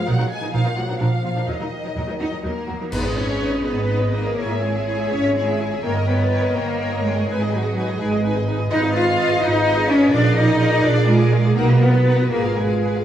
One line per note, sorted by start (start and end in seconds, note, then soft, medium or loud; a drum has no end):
0.06 0.13 A#1 medium
0.06 0.13 A#2 medium
0.06 0.12 D#3 medium
0.06 0.30 F#3 medium
0.06 0.12 D#4 medium
0.06 0.11 A#4 medium
0.06 0.31 F#5 loud
0.19 0.25 A#2 medium
0.19 0.24 D#3 medium
0.19 0.24 D#4 medium
0.19 0.24 A#4 medium
0.31 0.54 G#3 medium
0.31 0.54 G#5 loud
0.41 0.48 A#2 medium
0.41 0.46 D#3 medium
0.41 0.46 D#4 medium
0.41 0.47 A#4 medium
0.53 0.58 A#1 medium
0.53 0.59 A#2 medium
0.53 0.59 D#3 medium
0.53 0.64 F3 medium
0.53 0.59 D#4 medium
0.53 0.58 A#4 medium
0.53 0.78 F5 medium
0.65 0.70 A#2 medium
0.65 0.70 D#3 medium
0.65 0.70 D#4 medium
0.65 0.70 A#4 medium
0.76 0.82 A#1 medium
0.76 0.83 A#2 medium
0.76 0.82 F3 medium
0.76 1.00 F#3 medium
0.76 0.82 A#3 medium
0.76 0.81 F4 medium
0.76 1.01 F#5 medium
0.88 0.94 A#2 medium
0.88 0.93 F3 medium
0.88 0.94 D4 medium
0.88 0.93 A#4 medium
0.99 1.05 A#1 medium
0.99 1.06 A#2 medium
0.99 1.47 F3 medium
0.99 1.05 F3 medium
0.99 1.05 D4 medium
0.99 1.05 A#4 medium
0.99 1.48 F5 medium
1.24 1.30 A#1 medium
1.24 1.30 A#2 medium
1.24 1.29 F3 medium
1.24 1.29 A#3 medium
1.24 1.29 F4 medium
1.36 1.41 A#2 medium
1.36 1.41 F3 medium
1.36 1.41 D4 medium
1.36 1.42 A#4 medium
1.48 1.53 D#2 medium
1.48 2.65 D#3 medium
1.48 1.53 D#3 medium
1.48 1.53 F#3 medium
1.48 1.53 D#4 medium
1.48 1.54 A#4 medium
1.48 2.19 D#5 medium
1.60 1.66 D#3 soft
1.60 1.65 F#3 medium
1.60 1.65 D#4 medium
1.60 1.66 A#4 soft
1.84 1.90 D#3 soft
1.84 1.89 F#3 soft
1.84 1.89 D#4 medium
1.84 1.89 A#4 medium
1.95 2.01 D#2 medium
1.95 2.01 D#3 medium
1.95 2.00 F#3 medium
1.95 2.00 D#4 medium
1.95 2.02 A#4 medium
2.07 2.14 D#3 soft
2.07 2.12 F#3 medium
2.07 2.12 D#4 medium
2.07 2.14 A#4 medium
2.19 2.25 D#2 medium
2.19 2.26 D#3 medium
2.19 2.25 F#3 medium
2.19 2.24 A#3 medium
2.19 2.28 D#4 medium
2.19 2.25 F#4 medium
2.19 2.42 D#5 medium
2.30 2.38 D#3 soft
2.30 2.36 F#3 medium
2.30 2.36 D#4 medium
2.30 2.37 A#4 soft
2.42 2.49 D#2 medium
2.42 2.49 D#3 medium
2.42 2.48 F#3 medium
2.42 2.92 A#3 medium
2.42 2.48 D#4 medium
2.42 2.91 A#4 medium
2.42 2.49 A#4 medium
2.67 2.73 D#2 medium
2.67 2.73 D#3 soft
2.67 2.72 F#3 medium
2.67 2.72 A#3 medium
2.67 2.72 F#4 medium
2.80 2.85 D#3 soft
2.80 2.85 F#3 medium
2.80 2.85 D#4 medium
2.80 2.86 A#4 soft
2.91 3.57 G#1 medium
2.91 3.16 B3 medium
2.91 3.04 D#4 medium
2.91 4.33 G#4 medium
2.91 3.00 B4 loud
2.91 3.04 B4 medium
2.91 3.04 D#5 medium
2.91 concert bass drum medium
2.91 crash medium
3.05 3.17 G#4 medium
3.05 3.17 B4 medium
3.05 3.17 D#5 medium
3.16 3.65 C#4 medium
3.16 3.29 D#4 medium
3.16 3.29 B4 medium
3.16 3.64 C#5 loud
3.16 3.29 D#5 medium
3.29 3.41 G#4 medium
3.29 3.41 B4 medium
3.29 3.41 D#5 medium
3.40 3.52 D#4 medium
3.40 3.52 B4 medium
3.40 3.52 D#5 medium
3.52 3.65 G#4 medium
3.52 3.66 B4 medium
3.52 3.64 D#5 medium
3.63 4.29 G#1 medium
3.63 4.12 B3 loud
3.63 3.77 D#4 medium
3.63 4.12 B4 medium
3.63 3.77 B4 medium
3.63 3.78 D#5 medium
3.76 3.89 G#4 medium
3.76 3.89 B4 medium
3.76 3.89 D#5 medium
3.87 4.00 D#4 medium
3.87 4.00 B4 medium
3.87 3.99 D#5 medium
4.00 4.13 G#4 medium
4.00 4.13 B4 medium
4.00 4.13 D#5 medium
4.12 4.61 A#3 loud
4.12 4.25 D#4 medium
4.12 4.62 A#4 medium
4.12 4.25 B4 medium
4.12 4.26 D#5 medium
4.25 4.37 G#4 medium
4.25 4.38 B4 medium
4.25 4.37 D#5 medium
4.36 5.02 G#1 medium
4.36 4.49 E4 medium
4.36 5.80 C#5 medium
4.36 4.49 C#5 medium
4.36 4.49 G#5 medium
4.50 4.62 G#4 medium
4.50 4.62 E5 medium
4.50 4.63 E5 medium
4.61 5.10 G#3 medium
4.61 4.74 E4 medium
4.61 5.10 G#4 loud
4.61 4.74 C#5 medium
4.61 4.75 G#5 medium
4.74 4.87 G#4 medium
4.74 4.87 E5 medium
4.87 4.98 E4 medium
4.87 4.98 C#5 medium
4.87 4.98 G#5 medium
4.98 5.11 G#4 medium
4.98 5.11 E5 medium
5.10 5.75 G#1 medium
5.10 5.35 C#4 loud
5.10 5.24 E4 medium
5.10 5.35 C#5 loud
5.10 5.23 C#5 medium
5.10 5.24 G#5 medium
5.24 5.36 G#4 medium
5.24 5.36 E5 medium
5.35 5.83 G#3 loud
5.35 5.47 E4 medium
5.35 5.83 G#4 medium
5.35 5.48 C#5 medium
5.35 5.47 G#5 medium
5.48 5.61 G#4 medium
5.48 5.60 E5 medium
5.48 5.61 E5 medium
5.60 5.72 E4 medium
5.60 5.72 C#5 medium
5.60 5.72 G#5 medium
5.72 5.84 G#4 medium
5.72 5.84 E5 medium
5.83 6.47 G1 medium
5.83 5.92 A#3 loud
5.83 6.08 A#4 loud
5.83 5.96 A#4 medium
5.83 7.28 C#5 medium
5.83 5.95 C#5 medium
5.83 8.70 D#5 medium
5.83 5.95 G5 medium
5.95 6.07 A#4 medium
5.95 6.07 C#5 medium
5.95 6.07 D#5 medium
6.07 6.55 B3 loud
6.07 6.19 A#4 medium
6.07 6.56 B4 loud
6.07 6.18 C#5 medium
6.07 6.19 G5 medium
6.19 6.31 A#4 medium
6.19 6.30 C#5 medium
6.19 6.31 D#5 medium
6.31 6.43 A#4 medium
6.31 6.43 C#5 medium
6.31 6.42 G5 medium
6.43 6.54 A#4 medium
6.43 6.54 C#5 medium
6.43 6.56 D#5 medium
6.55 7.20 G1 medium
6.55 7.03 A#3 loud
6.55 6.67 A#4 medium
6.55 7.04 A#4 loud
6.55 6.67 C#5 medium
6.55 6.68 G5 medium
6.68 6.80 A#4 medium
6.68 6.80 C#5 medium
6.68 6.81 D#5 medium
6.80 6.92 A#4 medium
6.80 6.91 C#5 medium
6.80 6.91 G5 medium
6.92 7.04 A#4 medium
6.92 7.04 C#5 medium
6.92 7.04 D#5 medium
7.04 7.52 G#3 loud
7.04 7.51 G#4 medium
7.04 7.17 A#4 medium
7.04 7.17 C#5 medium
7.04 7.17 G5 medium
7.17 7.29 A#4 medium
7.17 7.29 C#5 medium
7.17 7.29 D#5 medium
7.28 7.91 G#1 medium
7.28 7.40 D#4 medium
7.28 10.08 B4 medium
7.28 7.40 B4 medium
7.28 7.40 G#5 medium
7.41 7.53 G#4 medium
7.41 7.52 D#5 medium
7.51 7.99 F#3 loud
7.51 7.64 D#4 medium
7.51 7.99 F#4 loud
7.51 7.64 B4 medium
7.51 7.64 G#5 medium
7.64 7.76 G#4 medium
7.64 7.76 D#5 medium
7.76 7.87 D#4 medium
7.76 7.87 B4 medium
7.76 7.87 G#5 medium
7.88 8.00 G#4 medium
7.88 8.00 D#5 medium
7.99 8.63 G#1 medium
7.99 8.23 G#3 loud
7.99 8.12 D#4 medium
7.99 8.08 G#4 medium
7.99 8.12 B4 medium
7.99 8.12 G#5 medium
8.12 8.24 G#4 medium
8.12 8.24 D#5 medium
8.23 8.34 D#4 medium
8.23 8.35 B4 medium
8.23 8.36 G#5 medium
8.35 8.47 G#4 medium
8.35 8.48 D#5 medium
8.47 8.59 D#4 medium
8.47 8.59 B4 medium
8.47 8.60 G#5 medium
8.59 8.71 G#4 medium
8.59 8.70 D#5 medium
8.71 9.34 G#1 loud
8.71 8.93 D#4 loud
8.71 8.82 F4 medium
8.71 8.82 B4 medium
8.71 8.79 D#5 loud
8.71 8.82 D#5 medium
8.71 10.09 D#5 medium
8.82 8.94 G#4 medium
8.82 8.94 D#5 medium
8.82 8.95 F5 medium
8.94 9.41 F4 loud
8.94 9.07 F4 medium
8.94 9.07 B4 medium
8.94 9.07 D#5 medium
8.94 9.41 F5 loud
9.06 9.18 G#4 medium
9.06 9.18 D#5 medium
9.06 9.19 F5 medium
9.18 9.29 F4 medium
9.18 9.29 B4 medium
9.18 9.29 D#5 medium
9.29 9.41 G#4 medium
9.29 9.41 D#5 medium
9.29 9.42 F5 medium
9.41 10.04 G#1 loud
9.41 9.89 D#4 loud
9.41 9.53 F4 medium
9.41 9.53 B4 medium
9.41 9.88 D#5 loud
9.41 9.54 D#5 medium
9.53 9.65 G#4 medium
9.53 9.65 D#5 medium
9.53 9.66 F5 medium
9.64 9.75 F4 medium
9.64 9.75 B4 medium
9.64 9.76 D#5 medium
9.76 9.88 G#4 medium
9.76 9.88 D#5 medium
9.76 9.88 F5 medium
9.88 10.12 C#4 loud
9.88 10.00 F4 medium
9.88 10.00 B4 medium
9.88 10.12 C#5 loud
9.88 10.00 D#5 medium
10.00 10.12 G#4 medium
10.00 10.12 D#5 medium
10.00 10.12 F5 medium
10.11 10.75 A#1 loud
10.11 10.36 D4 loud
10.11 10.23 F4 medium
10.11 11.40 G#4 loud
10.11 11.40 A#4 medium
10.11 10.23 A#4 medium
10.11 10.36 D5 loud
10.11 10.23 D5 medium
10.23 10.35 G#4 medium
10.23 10.35 D5 medium
10.23 10.36 F5 medium
10.35 10.84 D#4 loud
10.35 10.48 F4 medium
10.35 10.48 A#4 medium
10.35 10.48 D5 medium
10.35 10.82 D#5 loud
10.46 10.59 G#4 medium
10.46 10.59 D5 medium
10.46 10.59 F5 medium
10.59 10.70 F4 medium
10.59 10.70 A#4 medium
10.59 10.71 D5 medium
10.70 10.83 G#4 medium
10.70 10.83 D5 medium
10.70 10.84 F5 medium
10.83 11.47 A#1 medium
10.83 11.08 D4 loud
10.83 10.95 F4 medium
10.83 10.95 A#4 medium
10.83 10.96 D5 medium
10.83 11.08 D5 loud
10.95 11.07 G#4 medium
10.95 11.07 D5 medium
10.95 11.07 F5 medium
11.07 11.56 G#3 loud
11.07 11.18 F4 medium
11.07 11.56 G#4 loud
11.07 11.18 A#4 medium
11.07 11.19 D5 medium
11.18 11.31 G#4 medium
11.18 11.31 D5 medium
11.18 11.32 F5 medium
11.32 11.44 F4 medium
11.32 11.44 A#4 medium
11.32 11.44 D5 medium
11.44 11.56 G#4 medium
11.44 11.56 D5 medium
11.44 11.56 F5 medium
11.55 12.22 B1 loud
11.55 11.80 A#3 loud
11.55 11.68 D#4 medium
11.55 12.28 F#4 medium
11.55 11.64 A#4 loud
11.55 11.68 A#4 medium
11.55 12.28 B4 medium
11.55 11.67 F#5 medium
11.68 11.81 F#4 medium
11.68 11.81 B4 medium
11.68 11.80 D#5 medium
11.80 12.31 B3 loud
11.80 11.93 D#4 medium
11.80 11.93 A#4 medium
11.80 12.31 B4 loud
11.80 11.94 F#5 medium
11.93 12.06 F#4 medium
11.93 12.06 B4 medium
11.93 12.06 D#5 medium
12.06 12.18 D#4 medium
12.06 12.18 A#4 medium
12.06 12.19 F#5 medium
12.18 12.32 F#4 medium
12.18 12.31 B4 medium
12.18 12.31 D#5 medium
12.30 12.99 G#1 medium
12.30 12.56 A#3 loud
12.30 13.04 F4 medium
12.30 12.43 G#4 medium
12.30 12.57 A#4 loud
12.30 13.04 B4 medium
12.30 12.44 B4 medium
12.30 12.44 G#5 medium
12.44 12.57 F4 medium
12.44 12.57 G#4 medium
12.44 12.57 F5 medium
12.56 13.04 G#3 loud
12.56 13.04 G#4 medium
12.56 12.70 G#4 medium
12.56 12.70 B4 medium
12.56 12.70 G#5 medium
12.69 12.83 F4 medium
12.69 12.83 G#4 medium
12.69 12.82 F5 medium
12.81 12.96 G#4 medium
12.81 12.96 B4 medium
12.81 12.94 G#5 medium
12.95 13.04 F4 medium
12.95 13.04 G#4 medium
12.95 13.04 F5 medium